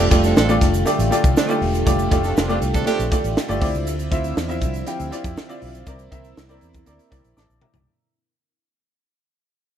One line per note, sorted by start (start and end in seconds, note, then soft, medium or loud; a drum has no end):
0.00 7.83 D3 medium
0.00 3.58 G3 medium
0.00 3.58 A3 medium
0.00 1.84 F4 loud
0.11 0.32 F1 medium
0.11 0.39 A3 medium
0.11 0.39 F4 medium
0.11 0.39 G4 medium
0.11 0.39 D5 medium
0.11 kick loud
0.11 closed hi-hat medium
0.11 shaker medium
0.24 0.34 C4 medium
0.24 0.34 D4 medium
0.24 0.34 A4 medium
0.24 snare soft
0.24 closed hi-hat medium
0.24 shaker soft
0.36 0.57 A1 medium
0.36 0.56 C4 loud
0.36 0.57 D4 loud
0.36 0.56 A4 loud
0.36 snare loud
0.36 shaker medium
0.49 0.76 A3 medium
0.49 0.77 F4 medium
0.49 0.77 G4 medium
0.49 0.77 D5 loud
0.49 closed hi-hat medium
0.49 shaker soft
0.61 0.82 F1 medium
0.61 kick medium
0.61 snare soft
0.61 closed hi-hat medium
0.61 shaker medium
0.74 closed hi-hat soft
0.74 shaker medium
0.85 1.04 A3 medium
0.85 1.05 F4 medium
0.85 1.05 G4 medium
0.85 1.05 D5 loud
0.85 closed hi-hat medium
0.85 shaker medium
0.99 1.09 A1 medium
0.99 closed hi-hat medium
0.99 shaker soft
1.11 1.39 A3 medium
1.11 1.39 F4 medium
1.11 1.39 G4 medium
1.11 1.39 D5 medium
1.11 closed hi-hat medium
1.11 shaker soft
1.24 1.34 C2 medium
1.24 kick loud
1.24 closed hi-hat medium
1.24 shaker soft
1.37 1.57 C4 loud
1.37 1.56 D4 loud
1.37 1.57 G4 loud
1.37 snare loud
1.37 shaker medium
1.48 1.76 A3 medium
1.48 1.77 F4 medium
1.48 1.77 G4 medium
1.48 1.77 D5 loud
1.48 closed hi-hat medium
1.48 shaker medium
1.61 1.82 E1 medium
1.61 open hi-hat medium
1.74 closed hi-hat medium
1.74 shaker soft
1.86 2.07 F1 loud
1.86 2.05 A3 medium
1.86 2.05 F4 medium
1.86 2.05 G4 medium
1.86 2.05 D5 loud
1.86 5.82 E5 medium
1.86 kick loud
1.86 closed hi-hat medium
1.86 shaker medium
1.99 closed hi-hat soft
1.99 shaker medium
2.11 2.32 F1 loud
2.11 2.39 A3 medium
2.11 2.39 F4 medium
2.11 2.39 G4 medium
2.11 2.40 D5 loud
2.11 kick loud
2.11 closed hi-hat medium
2.11 shaker medium
2.24 2.34 C4 medium
2.24 2.34 D4 medium
2.24 2.34 A4 medium
2.24 snare soft
2.24 closed hi-hat medium
2.24 shaker soft
2.36 2.57 F1 loud
2.36 2.46 C4 medium
2.36 2.46 D4 medium
2.36 2.46 F4 medium
2.36 snare loud
2.36 shaker medium
2.48 2.76 A3 medium
2.48 2.59 C4 medium
2.48 2.59 D4 medium
2.48 2.76 F4 medium
2.48 2.59 F4 medium
2.48 2.77 G4 medium
2.48 2.77 D5 loud
2.48 closed hi-hat medium
2.48 shaker soft
2.62 2.82 C2 medium
2.62 closed hi-hat medium
2.62 shaker medium
2.74 2.84 C4 loud
2.74 2.84 D4 loud
2.74 2.84 A4 loud
2.74 kick medium
2.74 closed hi-hat soft
2.74 shaker medium
2.86 3.05 A3 medium
2.86 3.06 C4 loud
2.86 3.06 D4 loud
2.86 3.05 F4 medium
2.86 3.06 G4 loud
2.86 3.05 G4 medium
2.86 3.05 A4 loud
2.86 closed hi-hat medium
2.86 shaker medium
2.99 3.10 A#1 medium
2.99 closed hi-hat medium
2.99 shaker soft
3.11 3.39 A3 medium
3.11 3.39 F4 medium
3.11 3.39 G4 medium
3.11 3.40 D5 loud
3.11 kick loud
3.11 closed hi-hat medium
3.11 shaker medium
3.24 3.35 A1 medium
3.24 closed hi-hat medium
3.24 shaker soft
3.37 snare loud
3.37 shaker medium
3.48 3.59 G1 medium
3.48 3.61 A3 loud
3.48 3.60 F4 medium
3.48 3.62 G4 medium
3.48 3.60 D5 loud
3.48 closed hi-hat soft
3.48 shaker medium
3.61 3.72 D2 medium
3.61 5.84 F3 medium
3.61 4.01 C4 medium
3.61 7.83 C4 medium
3.61 4.01 E4 medium
3.61 4.01 F4 medium
3.61 4.02 D5 loud
3.61 kick loud
3.61 open hi-hat medium
3.74 3.87 C#2 medium
3.74 closed hi-hat medium
3.74 shaker soft
3.87 4.07 D2 loud
3.87 closed hi-hat medium
3.87 shaker medium
3.99 closed hi-hat soft
3.99 shaker medium
4.11 4.32 D2 loud
4.11 4.39 C4 medium
4.11 4.39 E4 medium
4.11 4.39 F4 medium
4.11 4.40 E5 loud
4.11 kick loud
4.11 closed hi-hat medium
4.11 shaker soft
4.24 closed hi-hat medium
4.24 shaker soft
4.37 4.63 E2 medium
4.37 snare loud
4.37 shaker medium
4.48 4.76 C4 medium
4.48 4.77 E4 medium
4.48 4.77 F4 medium
4.48 4.77 E5 loud
4.48 closed hi-hat medium
4.48 shaker soft
4.61 4.82 C2 medium
4.61 kick medium
4.61 closed hi-hat medium
4.61 shaker medium
4.74 closed hi-hat soft
4.74 shaker medium
4.86 5.05 C4 medium
4.86 5.05 E4 medium
4.86 5.05 F4 medium
4.86 5.06 G4 loud
4.86 closed hi-hat medium
4.86 shaker medium
5.00 5.10 D2 medium
5.00 closed hi-hat medium
5.00 shaker soft
5.11 5.39 C4 medium
5.11 5.39 E4 medium
5.11 5.39 F4 medium
5.11 5.40 D5 loud
5.11 closed hi-hat medium
5.11 shaker soft
5.24 5.35 F2 medium
5.24 kick medium
5.24 closed hi-hat medium
5.24 shaker soft
5.37 snare loud
5.37 shaker medium
5.49 5.77 C4 medium
5.49 5.77 E4 medium
5.49 5.77 F4 medium
5.49 5.77 D5 loud
5.49 closed hi-hat soft
5.49 shaker medium
5.62 5.83 B1 medium
5.62 open hi-hat medium
5.75 closed hi-hat medium
5.75 shaker soft
5.86 6.07 C2 loud
5.86 7.85 A#3 medium
5.86 6.05 C4 medium
5.86 7.85 E4 loud
5.86 6.05 E4 medium
5.86 6.05 A#4 medium
5.86 6.06 D5 loud
5.86 kick loud
5.86 closed hi-hat medium
5.86 shaker medium
5.99 closed hi-hat soft
5.99 shaker medium
6.11 6.33 C2 medium
6.11 6.39 C4 medium
6.11 6.39 E4 medium
6.11 6.39 A#4 medium
6.11 6.40 E5 loud
6.11 kick medium
6.11 closed hi-hat medium
6.11 shaker medium
6.24 closed hi-hat medium
6.24 shaker soft
6.37 6.58 C2 medium
6.37 snare loud
6.37 shaker medium
6.48 6.77 C4 medium
6.48 6.77 E4 medium
6.48 6.77 A#4 medium
6.48 6.77 D5 medium
6.48 closed hi-hat medium
6.48 shaker soft
6.61 6.82 E2 medium
6.61 closed hi-hat medium
6.61 shaker medium
6.73 kick medium
6.73 closed hi-hat soft
6.73 shaker medium
6.86 6.97 D2 medium
6.86 7.05 C4 medium
6.86 7.05 E4 medium
6.86 7.05 A#4 medium
6.86 7.05 D5 medium
6.86 closed hi-hat medium
6.86 shaker medium
6.99 closed hi-hat medium
6.99 shaker soft
7.11 7.22 C2 medium
7.11 7.39 C4 medium
7.11 7.39 E4 medium
7.11 7.39 A#4 medium
7.11 7.39 D5 medium
7.11 kick medium
7.11 closed hi-hat medium
7.11 shaker soft
7.24 7.35 A#1 medium
7.24 closed hi-hat soft
7.24 shaker soft
7.37 7.47 A1 loud
7.37 7.61 A5 medium
7.37 7.60 D6 medium
7.37 snare medium
7.37 shaker medium
7.50 7.60 A#1 medium
7.50 shaker soft
7.61 8.09 E5 medium
7.61 8.09 A#5 medium
7.61 mid tom medium
7.74 7.85 C2 medium
7.74 floor tom medium
7.74 shaker soft